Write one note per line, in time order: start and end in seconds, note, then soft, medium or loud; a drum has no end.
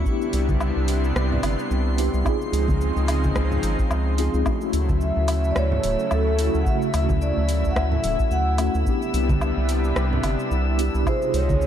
0.00 1.94 B3 medium
0.00 2.21 E4 medium
0.05 2.24 C3 medium
0.05 2.24 G3 medium
0.05 2.24 B3 medium
0.05 1.95 D4 medium
0.05 2.24 D4 medium
0.05 1.96 E4 medium
0.05 4.47 C6 medium
0.05 4.47 C7 medium
0.05 kick loud
0.05 shaker soft
0.09 1.97 G4 loud
0.22 shaker soft
0.33 0.72 C2 medium
0.33 open hi-hat medium
0.33 shaker medium
0.49 kick medium
0.49 high conga medium
0.49 shaker soft
0.60 low woodblock medium
0.60 shaker soft
0.77 1.12 C2 medium
0.88 open hi-hat medium
0.88 shaker medium
1.04 shaker soft
1.16 1.39 C2 medium
1.16 cross-stick medium
1.16 shaker soft
1.32 low conga medium
1.43 1.56 G1 medium
1.43 open hi-hat medium
1.43 low woodblock medium
1.43 shaker medium
1.59 shaker soft
1.71 2.09 C2 medium
1.71 shaker soft
1.97 2.22 B3 medium
1.97 2.23 D4 medium
1.97 2.23 E4 medium
1.97 2.24 G4 medium
1.97 open hi-hat medium
1.97 shaker medium
2.14 2.24 C2 medium
2.14 shaker soft
2.23 4.44 C#3 medium
2.23 4.44 F3 medium
2.23 4.44 G#3 medium
2.23 4.14 C4 medium
2.23 4.44 C4 medium
2.23 4.15 D#4 medium
2.23 4.44 D#4 medium
2.23 kick loud
2.23 low woodblock medium
2.23 shaker soft
2.27 4.16 F4 medium
2.27 4.17 G#4 loud
2.41 shaker soft
2.53 2.92 C#2 medium
2.53 open hi-hat medium
2.53 shaker medium
2.68 kick medium
2.68 high conga medium
2.68 shaker soft
2.81 shaker soft
2.96 3.32 C#2 medium
2.96 shaker soft
3.08 open hi-hat medium
3.08 low woodblock medium
3.08 shaker medium
3.24 kick medium
3.24 high conga medium
3.24 shaker soft
3.36 3.59 C#2 medium
3.36 kick medium
3.36 cross-stick medium
3.36 shaker soft
3.52 low conga medium
3.52 shaker soft
3.63 3.76 G#1 medium
3.63 open hi-hat medium
3.63 shaker medium
3.79 kick loud
3.79 shaker soft
3.91 4.29 C#2 medium
3.91 low woodblock medium
3.91 shaker soft
4.17 4.43 C4 medium
4.17 4.43 D#4 medium
4.17 4.44 F4 medium
4.17 4.44 G#4 medium
4.17 open hi-hat medium
4.17 shaker medium
4.34 4.44 C#2 medium
4.34 shaker soft
4.44 8.82 C#3 medium
4.44 8.83 F#3 medium
4.44 6.35 A3 medium
4.44 8.83 A3 medium
4.44 6.36 C#4 medium
4.44 11.03 E4 medium
4.44 6.37 E4 medium
4.44 11.08 E5 medium
4.44 11.08 E6 medium
4.44 kick loud
4.44 low woodblock medium
4.44 shaker soft
4.50 6.38 F#4 loud
4.61 shaker soft
4.73 5.12 D2 medium
4.73 open hi-hat medium
4.73 shaker medium
4.89 kick loud
4.89 high conga medium
4.89 shaker soft
5.01 5.52 E5 medium
5.01 shaker soft
5.16 5.53 D2 medium
5.28 open hi-hat medium
5.28 low woodblock medium
5.28 shaker medium
5.44 shaker soft
5.51 5.57 D5 medium
5.56 5.79 D2 medium
5.56 6.08 C#5 medium
5.56 cross-stick medium
5.56 shaker soft
5.72 low conga medium
5.84 5.97 D1 medium
5.84 open hi-hat medium
5.84 shaker medium
5.99 shaker soft
6.11 6.50 D2 medium
6.11 6.52 A4 medium
6.11 low woodblock medium
6.11 shaker soft
6.37 6.62 A3 medium
6.37 6.63 C#4 medium
6.37 6.64 E4 medium
6.37 6.64 F#4 medium
6.37 open hi-hat medium
6.37 shaker medium
6.54 6.64 D2 medium
6.54 shaker soft
6.61 8.55 A3 loud
6.61 6.67 F#5 medium
6.65 8.56 C#3 medium
6.65 8.57 E4 medium
6.65 7.24 E5 medium
6.65 kick loud
6.65 shaker soft
6.69 8.58 F#4 medium
6.82 shaker soft
6.94 7.32 D2 medium
6.94 open hi-hat medium
6.94 low woodblock medium
6.94 shaker medium
7.09 kick loud
7.09 high conga medium
7.09 shaker soft
7.22 7.67 D5 medium
7.22 shaker soft
7.37 7.73 D2 medium
7.49 open hi-hat medium
7.49 shaker medium
7.64 kick medium
7.64 shaker soft
7.71 7.77 F#5 medium
7.76 7.99 D2 medium
7.76 8.28 E5 loud
7.76 kick medium
7.76 cross-stick medium
7.76 low woodblock medium
7.76 shaker soft
7.92 low conga medium
8.04 8.17 D1 medium
8.04 open hi-hat medium
8.04 shaker medium
8.19 kick loud
8.19 shaker soft
8.31 8.70 D2 loud
8.31 8.72 F#5 loud
8.31 shaker soft
8.58 8.83 A3 medium
8.58 8.84 C#4 medium
8.58 8.84 E4 medium
8.58 8.85 F#4 medium
8.58 open hi-hat medium
8.58 low woodblock medium
8.58 shaker medium
8.75 8.84 D2 medium
8.75 shaker soft
8.84 11.05 C3 medium
8.84 11.05 G3 medium
8.84 10.75 B3 medium
8.84 11.05 B3 medium
8.84 10.76 D4 medium
8.84 11.05 D4 medium
8.84 10.77 E4 medium
8.84 kick loud
8.84 shaker soft
8.89 10.78 G4 loud
9.02 shaker soft
9.14 9.52 C2 medium
9.14 open hi-hat medium
9.14 shaker medium
9.29 kick loud
9.29 high conga loud
9.29 shaker soft
9.41 low woodblock medium
9.41 shaker soft
9.57 9.93 C2 medium
9.69 open hi-hat medium
9.69 shaker medium
9.84 shaker soft
9.96 10.20 C2 medium
9.96 cross-stick medium
9.96 shaker soft
10.13 low conga medium
10.23 10.37 G1 medium
10.23 open hi-hat medium
10.23 low woodblock medium
10.23 shaker medium
10.39 shaker soft
10.51 10.90 C2 medium
10.51 shaker soft
10.77 11.03 B3 medium
10.77 11.03 D4 medium
10.77 11.04 E4 medium
10.77 11.04 G4 medium
10.77 open hi-hat medium
10.77 shaker medium
10.95 11.04 C2 medium
10.95 shaker soft
11.04 11.67 C3 medium
11.04 11.67 F3 medium
11.04 11.67 G#3 medium
11.04 11.67 D#4 medium
11.04 11.67 F4 medium
11.04 11.67 C#6 medium
11.04 kick loud
11.04 low woodblock medium
11.04 shaker soft
11.08 11.67 G#4 loud
11.08 11.35 C5 medium
11.22 shaker soft
11.34 11.67 C#2 medium
11.34 11.67 C#5 loud
11.34 open hi-hat medium
11.34 shaker medium
11.49 kick loud
11.49 high conga medium
11.49 shaker soft
11.62 shaker soft